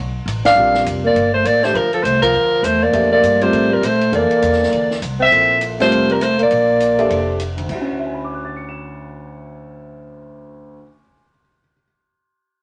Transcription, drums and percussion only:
0.28 hi-hat pedal soft
0.28 ride medium
0.45 snare medium
0.45 ride medium
0.74 snare soft
0.86 hi-hat pedal medium
0.86 ride medium
1.16 ride medium
1.45 hi-hat pedal soft
1.45 ride medium
1.63 snare soft
1.75 ride medium
1.93 ride soft
2.05 hi-hat pedal soft
2.05 ride medium
2.23 kick medium
2.23 ride medium
2.64 hi-hat pedal medium
2.64 ride medium
2.93 ride medium
3.23 hi-hat pedal soft
3.23 ride medium
3.41 ride soft
3.53 ride medium
3.83 hi-hat pedal medium
3.83 ride medium
4.01 ride soft
4.13 ride medium
4.31 ride soft
4.42 hi-hat pedal soft
4.42 ride medium
4.53 snare soft
4.63 snare soft
4.73 ride medium
4.91 snare soft
5.02 hi-hat pedal soft
5.02 ride medium
5.32 ride medium
5.61 hi-hat pedal medium
5.61 ride medium
5.80 snare soft
5.80 ride soft
5.92 ride medium
6.10 ride soft
6.21 hi-hat pedal medium
6.21 ride medium
6.39 ride soft
6.51 ride medium
6.80 hi-hat pedal medium
6.80 ride medium
6.99 ride soft
7.10 ride medium
7.40 hi-hat pedal soft
7.40 ride medium
7.58 ride soft
7.69 kick soft
7.69 crash medium

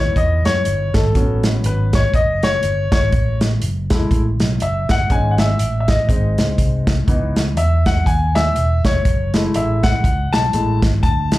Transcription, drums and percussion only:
0.16 kick medium
0.16 closed hi-hat medium
0.45 snare medium
0.45 closed hi-hat medium
0.65 closed hi-hat medium
0.94 kick medium
0.94 snare loud
0.94 closed hi-hat medium
1.15 kick medium
1.15 closed hi-hat medium
1.43 snare loud
1.43 closed hi-hat medium
1.64 closed hi-hat medium
1.93 kick medium
1.93 snare loud
1.93 closed hi-hat medium
2.14 kick loud
2.14 closed hi-hat medium
2.43 snare loud
2.43 closed hi-hat medium
2.63 closed hi-hat medium
2.92 kick medium
2.92 snare loud
2.92 closed hi-hat medium
3.12 kick loud
3.12 closed hi-hat medium
3.41 snare loud
3.41 closed hi-hat medium
3.62 closed hi-hat loud
3.90 kick loud
3.90 snare loud
3.90 closed hi-hat medium
4.11 kick medium
4.11 closed hi-hat medium
4.40 snare loud
4.40 closed hi-hat medium
4.60 closed hi-hat medium
4.89 kick medium
4.89 snare loud
4.89 closed hi-hat medium
5.10 kick medium
5.10 closed hi-hat medium
5.38 snare loud
5.38 closed hi-hat medium
5.59 closed hi-hat medium
5.88 kick medium
5.88 snare loud
5.88 closed hi-hat medium
6.09 kick medium
6.09 closed hi-hat medium
6.38 snare loud
6.38 closed hi-hat medium
6.58 kick medium
6.58 closed hi-hat medium
6.87 kick medium
6.87 snare loud
6.87 closed hi-hat medium
7.08 kick medium
7.08 closed hi-hat medium
7.36 snare medium
7.36 closed hi-hat medium
7.57 closed hi-hat medium
7.86 kick loud
7.86 snare loud
7.86 closed hi-hat medium
8.06 kick loud
8.06 closed hi-hat medium
8.36 snare medium
8.36 closed hi-hat medium
8.56 closed hi-hat medium
8.85 kick medium
8.85 snare loud
8.85 closed hi-hat medium
9.05 kick loud
9.05 closed hi-hat medium
9.34 snare loud
9.34 closed hi-hat medium
9.54 closed hi-hat medium
9.83 kick loud
9.83 snare loud
9.83 closed hi-hat medium
10.04 kick medium
10.04 closed hi-hat medium
10.33 snare loud
10.33 closed hi-hat medium
10.53 closed hi-hat medium
10.82 kick medium
10.82 snare loud
10.82 closed hi-hat medium
11.03 kick loud
11.03 closed hi-hat medium
11.32 snare loud
11.32 closed hi-hat medium

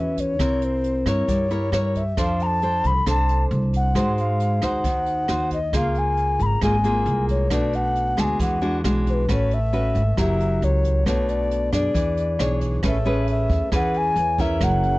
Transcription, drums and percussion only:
0.17 kick soft
0.17 closed hi-hat soft
0.39 kick medium
0.39 cross-stick medium
0.39 closed hi-hat medium
0.62 closed hi-hat soft
0.84 closed hi-hat soft
1.06 kick soft
1.06 cross-stick soft
1.06 closed hi-hat soft
1.28 kick medium
1.28 closed hi-hat medium
1.50 closed hi-hat soft
1.73 cross-stick medium
1.73 closed hi-hat soft
1.95 kick soft
1.95 closed hi-hat soft
2.17 kick medium
2.17 cross-stick medium
2.17 closed hi-hat soft
2.40 closed hi-hat soft
2.62 closed hi-hat soft
2.84 kick soft
2.84 closed hi-hat soft
3.06 kick medium
3.06 cross-stick medium
3.06 closed hi-hat medium
3.29 closed hi-hat soft
3.51 closed hi-hat soft
3.73 kick soft
3.73 closed hi-hat soft
3.95 kick medium
3.95 cross-stick medium
3.95 closed hi-hat medium
4.18 closed hi-hat soft
4.40 closed hi-hat soft
4.62 kick soft
4.62 cross-stick medium
4.62 closed hi-hat soft
4.84 kick medium
4.84 closed hi-hat medium
5.06 closed hi-hat soft
5.28 cross-stick medium
5.28 closed hi-hat soft
5.51 kick soft
5.51 closed hi-hat soft
5.73 kick medium
5.73 cross-stick medium
5.73 closed hi-hat medium
5.95 closed hi-hat soft
6.17 closed hi-hat soft
6.39 kick soft
6.39 closed hi-hat soft
6.61 kick medium
6.61 cross-stick medium
6.61 closed hi-hat medium
6.84 closed hi-hat soft
7.06 closed hi-hat soft
7.28 kick soft
7.28 closed hi-hat soft
7.50 kick medium
7.50 cross-stick medium
7.50 closed hi-hat medium
7.73 closed hi-hat soft
7.96 closed hi-hat soft
8.17 kick soft
8.17 cross-stick medium
8.17 closed hi-hat soft
8.40 kick medium
8.40 closed hi-hat medium
8.62 closed hi-hat soft
8.84 cross-stick medium
8.84 closed hi-hat soft
9.06 kick soft
9.06 closed hi-hat soft
9.29 kick medium
9.29 cross-stick medium
9.29 closed hi-hat soft
9.51 closed hi-hat soft
9.73 closed hi-hat soft
9.95 kick soft
9.95 closed hi-hat soft
10.17 kick medium
10.17 cross-stick medium
10.17 closed hi-hat medium
10.40 closed hi-hat soft
10.62 closed hi-hat soft
10.84 kick soft
10.84 closed hi-hat soft
11.06 kick medium
11.06 cross-stick medium
11.06 closed hi-hat medium
11.29 closed hi-hat soft
11.51 closed hi-hat soft
11.73 kick soft
11.73 cross-stick medium
11.73 closed hi-hat soft
11.95 kick medium
11.95 closed hi-hat medium
12.17 closed hi-hat soft
12.39 cross-stick medium
12.39 closed hi-hat soft
12.61 kick soft
12.61 closed hi-hat soft
12.83 kick medium
12.83 cross-stick medium
12.83 closed hi-hat soft
13.05 closed hi-hat soft
13.27 closed hi-hat soft
13.49 kick medium
13.49 closed hi-hat soft
13.72 kick medium
13.72 cross-stick medium
13.72 closed hi-hat soft
13.94 closed hi-hat soft
14.16 closed hi-hat soft
14.38 kick medium
14.38 closed hi-hat soft
14.61 kick medium
14.61 cross-stick medium
14.61 closed hi-hat soft
14.83 closed hi-hat soft

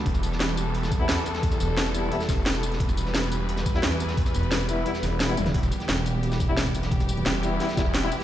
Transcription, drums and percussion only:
0.06 kick loud
0.06 closed hi-hat medium
0.15 snare soft
0.15 tambourine soft
0.23 closed hi-hat medium
0.23 tambourine medium
0.32 snare soft
0.40 snare loud
0.40 closed hi-hat medium
0.49 closed hi-hat soft
0.49 tambourine soft
0.57 closed hi-hat medium
0.57 tambourine medium
0.74 closed hi-hat medium
0.83 snare medium
0.83 tambourine soft
0.92 kick loud
0.92 closed hi-hat medium
0.92 tambourine medium
1.09 snare loud
1.09 closed hi-hat medium
1.17 closed hi-hat soft
1.17 tambourine soft
1.25 closed hi-hat medium
1.25 tambourine medium
1.35 snare medium
1.35 snare soft
1.35 closed hi-hat soft
1.43 kick loud
1.43 closed hi-hat medium
1.43 closed hi-hat loud
1.52 snare soft
1.52 tambourine soft
1.60 closed hi-hat medium
1.60 tambourine medium
1.77 snare loud
1.77 closed hi-hat medium
1.86 closed hi-hat soft
1.86 tambourine soft
1.94 closed hi-hat medium
1.94 tambourine medium
2.12 closed hi-hat medium
2.20 snare medium
2.20 tambourine soft
2.29 kick loud
2.29 snare soft
2.29 closed hi-hat medium
2.29 tambourine medium
2.46 snare loud
2.46 closed hi-hat loud
2.46 open hi-hat medium
2.54 closed hi-hat soft
2.54 tambourine soft
2.63 closed hi-hat medium
2.63 tambourine medium
2.72 snare soft
2.72 closed hi-hat soft
2.80 kick loud
2.80 closed hi-hat medium
2.80 closed hi-hat loud
2.89 snare soft
2.89 tambourine soft
2.97 closed hi-hat medium
2.97 tambourine medium
3.06 snare soft
3.14 snare loud
3.14 closed hi-hat medium
3.14 closed hi-hat loud
3.23 closed hi-hat soft
3.23 tambourine soft
3.32 closed hi-hat medium
3.32 tambourine medium
3.49 closed hi-hat loud
3.49 closed hi-hat medium
3.57 snare medium
3.57 tambourine soft
3.66 kick loud
3.66 closed hi-hat medium
3.66 tambourine medium
3.74 snare soft
3.82 snare loud
3.82 closed hi-hat medium
3.82 closed hi-hat loud
3.92 closed hi-hat soft
3.92 tambourine soft
4.00 closed hi-hat medium
4.00 tambourine medium
4.09 snare medium
4.09 snare soft
4.09 closed hi-hat soft
4.17 kick loud
4.17 closed hi-hat medium
4.17 closed hi-hat loud
4.26 snare soft
4.26 closed hi-hat soft
4.26 tambourine soft
4.34 closed hi-hat medium
4.34 tambourine medium
4.43 closed hi-hat soft
4.51 snare loud
4.51 closed hi-hat medium
4.51 closed hi-hat loud
4.60 closed hi-hat soft
4.60 tambourine soft
4.69 closed hi-hat medium
4.69 tambourine medium
4.86 closed hi-hat loud
4.86 closed hi-hat medium
4.94 snare medium
4.94 tambourine soft
5.03 snare soft
5.03 closed hi-hat medium
5.03 tambourine medium
5.20 snare loud
5.20 closed hi-hat loud
5.20 open hi-hat medium
5.29 closed hi-hat soft
5.29 tambourine soft
5.37 closed hi-hat medium
5.37 high tom medium
5.37 tambourine medium
5.46 snare medium
5.46 closed hi-hat soft
5.46 mid tom medium
5.54 kick loud
5.54 closed hi-hat loud
5.63 snare soft
5.63 tambourine soft
5.71 closed hi-hat medium
5.71 tambourine medium
5.80 snare soft
5.80 closed hi-hat soft
5.88 snare loud
5.88 closed hi-hat medium
5.97 closed hi-hat soft
5.97 tambourine soft
6.06 closed hi-hat medium
6.06 tambourine medium
6.23 closed hi-hat medium
6.23 closed hi-hat loud
6.32 snare medium
6.32 tambourine soft
6.40 kick loud
6.40 closed hi-hat medium
6.40 tambourine medium
6.57 snare loud
6.57 closed hi-hat medium
6.57 closed hi-hat loud
6.66 kick medium
6.66 closed hi-hat soft
6.66 tambourine soft
6.74 closed hi-hat medium
6.74 tambourine medium
6.83 snare soft
6.83 closed hi-hat soft
6.91 kick loud
6.91 closed hi-hat medium
6.91 closed hi-hat loud
7.00 snare soft
7.00 closed hi-hat soft
7.00 tambourine soft
7.08 closed hi-hat medium
7.08 tambourine medium
7.17 closed hi-hat soft
7.26 snare loud
7.26 closed hi-hat medium
7.34 closed hi-hat soft
7.34 tambourine soft
7.43 closed hi-hat medium
7.43 tambourine medium
7.60 snare soft
7.60 closed hi-hat medium
7.69 snare medium
7.69 tambourine soft
7.77 kick loud
7.77 snare loud
7.77 closed hi-hat medium
7.77 tambourine medium
7.94 snare loud
7.94 closed hi-hat loud
7.94 closed hi-hat medium
8.03 closed hi-hat soft
8.03 tambourine soft
8.12 closed hi-hat medium
8.12 tambourine medium
8.20 snare medium
8.20 closed hi-hat soft

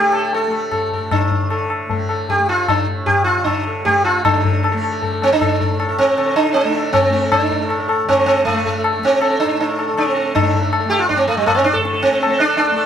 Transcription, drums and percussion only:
0.13 tabla na medium
0.33 tabla tin medium
0.52 tabla na medium
0.72 tabla na medium
0.72 tabla ge medium
0.92 tabla ge medium
1.11 tabla na loud
1.11 tabla ge medium
1.31 tabla ge medium
1.50 tabla na medium
1.70 tabla na medium
1.90 tabla tin medium
1.90 tabla ge medium
2.09 tabla na medium
2.29 tabla tin medium
2.29 tabla ge medium
2.49 tabla na medium
2.68 tabla na medium
2.68 tabla ge medium
3.07 tabla tin medium
3.07 tabla ge medium
3.26 tabla na medium
3.46 tabla na medium
3.46 tabla ge medium
3.86 tabla tin medium
3.86 tabla ge medium
4.06 tabla na medium
4.25 tabla na loud
4.25 tabla ge medium
4.44 tabla ge medium
4.64 tabla na medium
4.83 tabla na medium
5.03 tabla tin medium
5.03 tabla ge medium
5.22 tabla na medium
5.41 tabla na medium
5.41 tabla ge medium
5.61 tabla ge medium
5.80 tabla na medium
5.99 tabla ke medium
6.18 tabla na medium
6.37 tabla na medium
6.56 tabla tin medium
6.75 tabla na medium
6.94 tabla na medium
6.94 tabla ge medium
7.13 tabla te medium
7.32 tabla na loud
7.32 tabla ge loud
7.51 tabla ge medium
7.70 tabla na medium
7.89 tabla na medium
8.09 tabla tin medium
8.09 tabla ge medium
8.28 tabla na medium
8.47 tabla na medium
8.47 tabla ge medium
8.66 tabla ge medium
8.84 tabla na medium
9.03 tabla ke medium
9.22 tabla na medium
9.40 tabla na medium
9.59 tabla tin medium
9.79 tabla na medium
9.98 tabla na medium
10.17 tabla te medium
10.36 tabla na loud
10.36 tabla ge medium
10.54 tabla ge medium
10.73 tabla na medium
10.92 tabla na medium
11.10 tabla tin medium
11.10 tabla ge medium
11.30 tabla na medium
11.48 tabla na medium
11.48 tabla ge medium
11.66 tabla te medium
11.75 tabla ge medium
11.85 tabla te medium
11.94 tabla te medium
12.04 tabla ke medium
12.13 tabla te medium
12.23 tabla na medium
12.41 tabla na medium
12.60 tabla tin medium
12.78 tabla na medium

